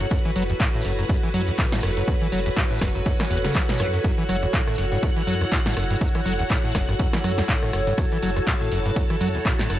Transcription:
Already playing: E4 F#4 A4 C#5 F#5
0.00 F#2, closed hi-hat, cabasa
0.11 F#2 B4, kick, closed hi-hat, ride, cabasa
0.25 E3
0.36 F#1 F#3, open hi-hat, ride, cabasa
0.50 E2, closed hi-hat, cabasa
0.60 A2, kick, clap, closed hi-hat, ride, cabasa
0.74 A2
0.85 F#1 F#2, open hi-hat, ride, cabasa
0.99 F#2, closed hi-hat, cabasa
1.09 F#2, kick, closed hi-hat, ride, cabasa
1.23 E3
1.34 F#2 F#3, open hi-hat, ride, cabasa
1.48 E2, closed hi-hat, cabasa
1.58 A2, kick, clap, closed hi-hat, ride, cabasa
1.72 A2, snare
1.83 F#1 F#2, cross-stick, open hi-hat, ride, cabasa
1.97 F#2, closed hi-hat, cabasa
2.08 F#2, kick, closed hi-hat, ride, cabasa
2.22 E3
2.32 F#1 F#3, open hi-hat, ride, cabasa
2.46 E2, closed hi-hat, cabasa
2.57 A2, kick, clap, closed hi-hat, ride, cabasa
2.71 A2
2.81 F#1 F#2, kick, cross-stick, snare, open hi-hat, ride, cabasa
2.95 F#2, closed hi-hat, cabasa
3.06 F#2, kick, closed hi-hat, ride, cabasa
3.20 E3, cross-stick, snare
3.30 F#1 E2, open hi-hat, ride, cabasa
3.44 C#3, snare, closed hi-hat, cabasa
3.55 F#3, kick, clap, closed hi-hat, ride, cabasa
3.69 B2, snare
3.80 F#2, cross-stick, open hi-hat, ride, cabasa
3.94 F#2, closed hi-hat, cabasa
4.04 F#2 F#5, kick, closed hi-hat, ride, cabasa
4.18 E3
4.29 F#1 F#3, cross-stick, open hi-hat, ride, cabasa
4.43 E2, closed hi-hat, cabasa
4.54 A2, kick, clap, closed hi-hat, ride, cabasa
4.67 A2, cross-stick
4.78 F#1 F#2, open hi-hat, ride, cabasa
4.92 G2, closed hi-hat, cabasa
5.03 F#2, kick, cross-stick, closed hi-hat, ride, cabasa
5.17 E3
5.27 F#2 F#3, open hi-hat, ride, cabasa
5.41 E2, cross-stick, closed hi-hat, cabasa
5.52 A2, kick, clap, closed hi-hat, ride, cabasa
5.66 A2, snare
5.77 F#1 F#2, cross-stick, open hi-hat, ride, cabasa
5.90 G2, closed hi-hat, cabasa
6.01 F#2, kick, closed hi-hat, ride, cabasa
6.15 E3, cross-stick
6.26 F#1 F#3, open hi-hat, ride, cabasa
6.39 E2, closed hi-hat, cabasa
6.50 A2, kick, cross-stick, clap, closed hi-hat, ride, cabasa
6.64 A2
6.75 F#1 F#2, kick, cross-stick, snare, open hi-hat, ride, cabasa
6.89 G2, cross-stick, closed hi-hat, cabasa
6.99 F#2, kick, closed hi-hat, ride, cabasa
7.13 E3, cross-stick, snare
7.24 F#2 F#3, cross-stick, open hi-hat, ride, cabasa
7.38 E2, snare, closed hi-hat, cabasa
7.49 A2, kick, clap, closed hi-hat, ride, cabasa
7.63 A2, cross-stick
7.73 F#1 F#2, cross-stick, open hi-hat, ride, cabasa
7.87 G2, closed hi-hat, cabasa
7.98 F#2 A5, kick, cross-stick, closed hi-hat, ride, cabasa
8.12 E3
8.22 F#1 F#3, open hi-hat, ride, cabasa
8.36 E2, cross-stick, closed hi-hat, cabasa
8.47 A2, kick, clap, closed hi-hat, ride, cabasa
8.61 A2
8.72 F#1 F#2, open hi-hat, ride, cabasa
8.86 G2, closed hi-hat, cabasa
8.96 F#2, kick, closed hi-hat, ride, cabasa
9.10 E3, cross-stick
9.21 F#2 F#3, open hi-hat, ride, cabasa
9.35 E2, closed hi-hat, cabasa
9.45 A2, kick, cross-stick, clap, closed hi-hat, ride, cabasa
9.59 A2, snare
9.70 F#1 F#2, cross-stick, open hi-hat, ride, cabasa

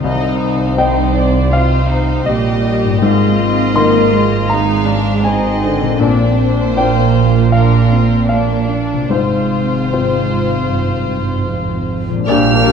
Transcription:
Already playing: C3 D#3 C4 C5
0.02 C2 C3 C4 D#4 D#5
0.42 C5
0.77 C4 D#4 D#5 G5
1.15 D5
1.51 C4 F4 C5 F5
1.91 D#4
2.26 A#1 A#2 G3 G4 D#5
2.84 G#2
2.89 A#3
2.98 G#1 G#2 G#3 F4 A#4
3.02 G#2 D#5
3.38 C4
3.75 D#3 A#3 A#4 C6
4.13 G#3
4.49 D#4 F5 A#5
4.87 D4
5.23 C4 D#4 D#5 G#5
5.64 D3
5.82 A#2
5.87 C4
5.91 D4
5.96 D4 C5
6.00 A#1 A#2 C4 D5
6.39 C5
6.76 A#3 D4 F4 C5 G5
7.52 D4 F4 A#4 F5
7.91 C4
8.29 A#3 D4 D5 F5
8.70 D4
8.93 C3
8.97 C4
9.02 F4
9.06 G#2 C5
9.10 G#1 G#2 C4 F4 C5
9.92 G#2 C4 F4 C5
10.72 G2
11.51 F2
12.10 A#2
12.15 A#3
12.19 D4
12.23 G4 A#4 D5
12.28 A#1 A#2 G3 A#3 D4 G4 F5 F6
12.53 A#3
12.63 A#3 G4 A#4 D5

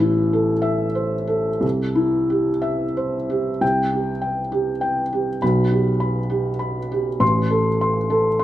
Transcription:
Already playing: A1
0.00 E4
0.33 A4
0.62 E5
0.95 C5
1.27 A4
1.61 C2
1.95 E4
2.30 G4
2.62 E5
2.97 C5
3.30 G4
3.61 C2 G5
3.92 G4
4.22 G5
4.52 G4
4.81 G5
5.13 G4
5.42 B1 B5
5.72 G4
6.00 B5
6.30 G4
6.59 B5
6.92 G4
7.20 A1 C6
7.50 A4
7.81 C6
8.10 A4
8.39 C6

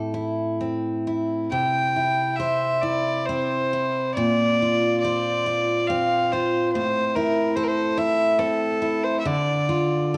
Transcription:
Already playing: A2 C4 E4 A4
0.14 E4
0.60 C4
1.07 E4
1.51 C3 G5
1.96 E4
2.36 C5 E5
2.82 E4 D5
3.26 C4 C5
3.73 E4
4.15 A#2 D5
4.62 F4
5.00 D5
5.04 C5
5.46 F4
5.87 C4 F5
6.32 F4 C5
6.72 A2 C5
7.15 E4 A#4
7.56 A4 C5
7.63 A#4
7.67 C5
7.97 E4 E5
8.39 C4 A4
8.82 E4
9.04 C5
9.20 E5
9.25 D3 D5
9.69 F4
10.14 A4

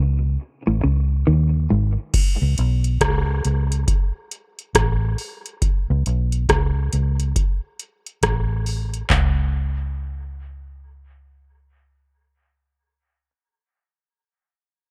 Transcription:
Already playing: C#2 C#3
0.67 A1 A2
0.84 C#2 C#3
1.27 D#2 D#3
1.70 G#1 G#2
2.14 kick, closed hi-hat, crash
2.42 C#2
2.58 B1, closed hi-hat
2.84 closed hi-hat
3.01 C#2, kick, cross-stick, closed hi-hat
3.45 C#2, closed hi-hat
3.72 closed hi-hat
3.88 kick, closed hi-hat
4.31 closed hi-hat
4.59 closed hi-hat
4.75 A1, kick, cross-stick, closed hi-hat
5.18 open hi-hat
5.46 closed hi-hat
5.62 kick, closed hi-hat
5.90 C#2
6.06 B1, closed hi-hat
6.32 closed hi-hat
6.49 C#2, kick, cross-stick, closed hi-hat
6.93 C#2, closed hi-hat
7.20 closed hi-hat
7.36 kick, closed hi-hat
7.79 closed hi-hat
8.06 closed hi-hat
8.23 A1, kick, cross-stick, closed hi-hat
8.66 open hi-hat
8.94 closed hi-hat
9.10 C#2, kick, clap, floor tom

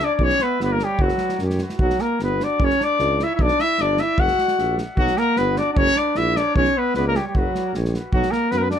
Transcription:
0.01 D4 D5
0.13 D4 D5
0.19 B1 C#4, kick
0.23 C#5
0.30 snare
0.39 B3 B4, snare
0.59 G1 B3 B4, snare
0.71 A#3 A#4
0.79 G3, snare
0.84 G4
0.99 F#1 F#3 F#4, kick
1.09 snare
1.18 snare
1.29 snare
1.39 F#2, snare
1.50 snare
1.58 snare
1.70 snare
1.79 B1 F#3 F#4, kick
1.90 snare
1.99 A#3 A#4, snare
2.20 G1 B3 B4, snare
2.40 D4 D5, snare
2.60 F#1 C#4, kick
2.64 C#5
2.70 snare
2.80 D4 D5, snare
2.99 C#2, snare
3.20 E4 E5, snare
3.35 E4 E5
3.39 B1 D4 D5, kick
3.48 snare
3.59 E4 E5, snare
3.78 G1 D4 D5, snare
3.98 E5, snare
4.02 E4
4.18 F#1 F#4 F#5, kick
4.28 snare
4.39 snare
4.48 snare
4.58 A#1, snare
4.78 snare
4.97 B1 F#3 F#4, kick
5.08 snare
5.17 A#3 A#4, snare
5.36 G1 B3 B4, snare
5.56 D4 D5, snare
5.73 D4 D5, kick
5.77 F#1 C#4 C#5
5.86 snare
5.96 D4 D5, snare
6.15 A#1 E4 E5, snare
6.36 D4 D5, snare
6.55 B1 C#4 C#5, kick
6.65 snare
6.77 B3 B4
6.94 C#2 B3 B4, snare
7.07 A#3 A#4
7.15 G3 G4, snare
7.28 G3 G4
7.35 F#1 F#3 F#4, kick
7.55 snare
7.75 A#1, snare
7.85 snare
7.94 snare
8.13 B1 F#3 F#4, kick
8.23 snare
8.31 A#3 A#4, snare
8.51 F#2 B3 B4, snare
8.57 A#3 B3 A#4 B4
8.70 D4 D5, snare

